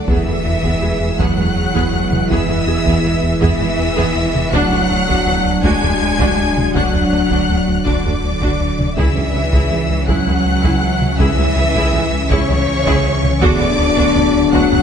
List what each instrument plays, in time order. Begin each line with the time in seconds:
0.07 sub bass E1, analog synth bass E2, double bass section E2, synth pluck E3, cello section E3, french horn section G#3 E4, viola section B3 G#4, ambient pad B3 E4 G#4 B4, violin section E5 E6, taiko
0.26 analog synth bass E2, double bass section E2, viola section B3 G#4, synth pluck E4
0.45 analog synth bass E2, double bass section E2, viola section B3 G#4, synth pluck E4
0.63 analog synth bass E2, double bass section E2, synth pluck E3, viola section B3 G#4, taiko
0.82 double bass section E2, analog synth bass E2, synth pluck G#3, viola section B3 G#4, felt piano G#4
1.00 analog synth bass E2
1.19 analog synth bass E2, double bass section E2, synth pluck E3, cello section F#3, viola section B3 G#4, violin section F#5 F#6, taiko
1.37 analog synth bass E2, double bass section E2, synth pluck G#3, viola section B3 G#4
1.56 analog synth bass E2
1.74 analog synth bass E2, double bass section E2, synth pluck E3, viola section B3 G#4, taiko
1.93 analog synth bass E2
2.12 analog synth bass E2, taiko mid
2.30 analog synth bass E2, double bass section E2, synth pluck E3, cello section E3, viola section B3 G#4, violin section E5 E6, taiko
2.48 analog synth bass E2, double bass section E2, viola section B3 G#4, synth pluck E4
2.67 double bass section E2, analog synth bass E2, viola section B3 G#4, synth pluck E4, felt piano G#4
2.85 double bass section E2, analog synth bass E2, synth pluck E3, viola section B3 G#4, taiko
3.04 double bass section E2, analog synth bass E2, synth pluck G#3, viola section B3 G#4
3.23 analog synth bass E2
3.41 double bass section E2, analog synth bass E2, cello section E3, synth pluck E3, viola section B3 G#4, violin section E5 E6, taiko
3.60 double bass section E2, analog synth bass E2, synth pluck G#3, viola section B3 G#4
3.79 analog synth bass E2
3.97 double bass section E2, analog synth bass E2, synth pluck E3, viola section B3 G#4, taiko
4.15 analog synth bass E2
4.35 analog synth bass E2, taiko mid
4.51 sub bass D1, double bass section D2, analog synth bass D2, synth pluck D3, ambient pad F#3 D4 F#4 D5, french horn section F#3 D4, cello section F#3, viola section D4 F#4, violin section F#5 F#6, taiko
4.71 analog synth bass D2, double bass section D2, synth pluck D4, viola section D4 F#4
4.90 analog synth bass D2, double bass section D2, synth pluck D4, viola section D4 F#4
5.08 analog synth bass D2, double bass section D2, synth pluck D3, viola section D4 F#4, taiko
5.26 double bass section D2, analog synth bass D2, synth pluck F#3, viola section D4 F#4
5.45 analog synth bass D2
5.63 double bass section D2, analog synth bass D2, synth pluck D3, cello section G#3, viola section D4 F#4, violin section G#5 G#6, taiko
5.82 analog synth bass D2, double bass section D2, synth pluck F#3, viola section D4 F#4
6.02 analog synth bass D2
6.19 double bass section D2, analog synth bass D2, synth pluck D3, viola section D4 F#4, taiko
6.38 analog synth bass D2
6.57 analog synth bass D2, taiko mid
6.74 double bass section D2, analog synth bass D2, synth pluck D3, cello section F#3, viola section D4 F#4, violin section F#5 F#6, taiko
6.93 double bass section D2, analog synth bass D2, synth pluck D4, viola section D4 F#4
7.12 double bass section D2, analog synth bass D2, synth pluck D4, viola section D4 F#4
7.30 double bass section D2, analog synth bass D2, synth pluck D3, viola section D4 F#4, taiko
7.49 analog synth bass D2, double bass section D2, synth pluck F#3, viola section D4 F#4
7.68 analog synth bass D2
7.85 double bass section D2, analog synth bass D2, synth pluck D3, cello section D3, viola section D4 F#4, violin section D5 D6, taiko
8.04 analog synth bass D2, double bass section D2, synth pluck F#3, viola section D4 F#4
8.23 analog synth bass D2
8.40 analog synth bass D2, double bass section D2, synth pluck D3, viola section D4 F#4, taiko
8.60 analog synth bass D2
8.79 analog synth bass D2, taiko mid
8.95 analog synth bass C#2, sub bass C#2, double bass section C#2, synth pluck C#3, french horn section E3 C#4, ambient pad E3 C#4 E5 G#5, cello section E3, viola section E4 G#4, violin section E5 E6, taiko
9.15 analog synth bass C#2, double bass section C#2, synth pluck C#4, viola section E4 G#4
9.34 double bass section C#2, analog synth bass C#2, synth pluck C#4, viola section E4 G#4
9.53 analog synth bass C#2, double bass section C#2, synth pluck C#3, viola section E4 G#4, taiko
9.71 analog synth bass C#2, double bass section C#2, synth pluck E3, viola section E4 G#4
9.90 analog synth bass C#2
10.07 analog synth bass C#2, double bass section C#2, synth pluck C#3, cello section F#3, viola section E4 G#4, violin section F#5 F#6, taiko
10.26 analog synth bass C#2, double bass section C#2, synth pluck E3, viola section E4 G#4
10.45 analog synth bass C#2
10.63 double bass section C#2, analog synth bass C#2, synth pluck C#3, viola section E4 G#4, taiko
10.83 analog synth bass C#2
11.01 analog synth bass C#2, taiko mid
11.19 analog synth bass C#2, double bass section C#2, synth pluck C#3, cello section E3, viola section E4 G#4, felt piano A4, violin section E5 E6, taiko
11.37 analog synth bass C#2, double bass section C#2, synth pluck C#4, viola section E4 G#4
11.56 analog synth bass C#2, double bass section C#2, synth pluck C#4, viola section E4 G#4
11.74 analog synth bass C#2, double bass section C#2, synth pluck C#3, viola section E4 G#4, taiko
11.93 analog synth bass C#2, double bass section C#2, synth pluck E3, viola section E4 G#4
12.12 analog synth bass C#2
12.30 double bass section C#2, analog synth bass C#2, synth pluck C#3, cello section C#3, viola section E4 G#4, violin section C#5 C#6, taiko
12.48 analog synth bass C#2, double bass section C#2, synth pluck E3, viola section E4 G#4
12.67 analog synth bass C#2
12.85 analog synth bass C#2, double bass section C#2, synth pluck C#3, viola section E4 G#4, taiko
13.05 analog synth bass C#2
13.23 analog synth bass C#2, taiko mid
13.41 sub bass D1, analog synth bass D2, double bass section D2, cello section D3, french horn section F#3 D4, synth pluck B3, ambient pad B3 D4 F#4 D5, viola section D4 F#4, felt piano G#4, violin section D5 D6, taiko
13.60 analog synth bass D2, double bass section D2, viola section D4 F#4, synth pluck B4
13.78 analog synth bass D2, double bass section D2, viola section D4 F#4, synth pluck B4
13.97 double bass section D2, analog synth bass D2, synth pluck B3, viola section D4 F#4, taiko
14.15 double bass section D2, analog synth bass D2, viola section D4 F#4, synth pluck D4
14.34 analog synth bass D2
14.52 double bass section D2, analog synth bass D2, cello section F#3, synth pluck B3, viola section D4 F#4, violin section F#5 F#6, taiko
14.71 double bass section D2, analog synth bass D2, viola section D4 F#4, synth pluck D4